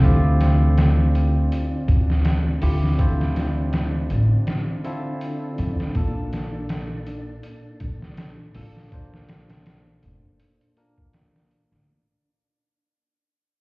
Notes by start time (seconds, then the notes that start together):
0.02 D2 D3 C4 D4 E4 F4 G4, kick, closed hi-hat
0.41 snare, closed hi-hat
0.78 snare, closed hi-hat
1.15 closed hi-hat
1.52 closed hi-hat
1.88 D2, kick, closed hi-hat
2.10 snare
2.25 snare, closed hi-hat
2.61 D2 D3 C4 E4 F4 G4, open hi-hat
2.84 snare
2.98 D3 C4 E4 F4 C5, kick, closed hi-hat
3.21 snare
3.36 snare, closed hi-hat
3.73 snare, closed hi-hat
4.10 A1, closed hi-hat
4.47 snare, closed hi-hat
4.84 D3 C4 E4 F4 A4, closed hi-hat
5.21 closed hi-hat
5.58 F2, closed hi-hat
5.80 A1, snare
5.94 A#1 A#2 A#3 D4 A4, kick, closed hi-hat
6.33 snare, closed hi-hat
6.69 snare, closed hi-hat
7.07 closed hi-hat
7.43 closed hi-hat
7.80 A#1, kick, closed hi-hat
8.02 snare
8.17 snare, closed hi-hat
8.54 A#1 A#2 A#3 D4 A4, open hi-hat
8.77 snare
8.90 A#2 A#3 D4 C5, kick, closed hi-hat
9.14 snare
9.29 snare, closed hi-hat
9.49 snare, closed hi-hat
9.66 snare, closed hi-hat
10.03 F1, closed hi-hat
10.40 closed hi-hat
10.61 closed hi-hat
10.77 A#2 A#3 D4 A#4, closed hi-hat
10.98 kick
11.13 snare, closed hi-hat
11.36 snare
11.51 closed hi-hat
11.72 D2, snare